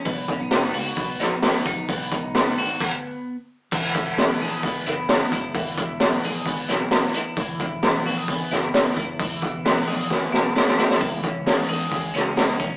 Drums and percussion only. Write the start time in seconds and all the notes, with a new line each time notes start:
0.05 kick, hi-hat pedal, open hi-hat
0.28 kick, hi-hat pedal, open hi-hat
0.51 snare, hi-hat pedal, open hi-hat
0.74 hi-hat pedal, open hi-hat
0.96 kick, hi-hat pedal, open hi-hat
1.19 snare, hi-hat pedal, open hi-hat
1.42 snare, hi-hat pedal, open hi-hat
1.65 kick, hi-hat pedal, open hi-hat
1.89 kick, hi-hat pedal, open hi-hat
2.11 kick, hi-hat pedal, open hi-hat
2.34 snare, hi-hat pedal, open hi-hat
2.58 hi-hat pedal, open hi-hat
2.81 kick, crash
3.72 kick, crash
3.94 kick, hi-hat pedal, open hi-hat
4.18 snare, hi-hat pedal, open hi-hat
4.40 hi-hat pedal, open hi-hat
4.63 kick, hi-hat pedal, open hi-hat
4.86 hi-hat pedal, open hi-hat
5.09 snare, hi-hat pedal, open hi-hat
5.32 kick, hi-hat pedal, open hi-hat
5.54 kick, hi-hat pedal, open hi-hat
5.77 kick, hi-hat pedal, open hi-hat
6.00 snare, hi-hat pedal, open hi-hat
6.23 hi-hat pedal, open hi-hat
6.45 kick, hi-hat pedal, open hi-hat
6.68 snare, hi-hat pedal, open hi-hat
6.91 snare, hi-hat pedal, open hi-hat
7.14 hi-hat pedal, open hi-hat
7.37 kick, hi-hat pedal, open hi-hat
7.60 kick, hi-hat pedal, open hi-hat
7.82 snare, hi-hat pedal, open hi-hat
8.05 hi-hat pedal, open hi-hat
8.28 kick, hi-hat pedal, open hi-hat
8.51 snare, hi-hat pedal, open hi-hat
8.74 snare, hi-hat pedal, open hi-hat
8.96 kick, hi-hat pedal, open hi-hat
9.19 kick, hi-hat pedal, open hi-hat
9.42 kick, hi-hat pedal, open hi-hat
9.65 snare, hi-hat pedal, open hi-hat
9.88 hi-hat pedal, open hi-hat
10.10 kick, snare
10.34 snare
10.56 snare
10.67 snare
10.79 snare
10.90 snare
11.01 kick, hi-hat pedal, open hi-hat
11.24 kick, hi-hat pedal, open hi-hat
11.46 snare, hi-hat pedal, open hi-hat
11.69 hi-hat pedal, open hi-hat
11.92 kick, hi-hat pedal, open hi-hat
12.14 snare, hi-hat pedal, open hi-hat
12.37 snare, hi-hat pedal, open hi-hat
12.59 kick, hi-hat pedal, open hi-hat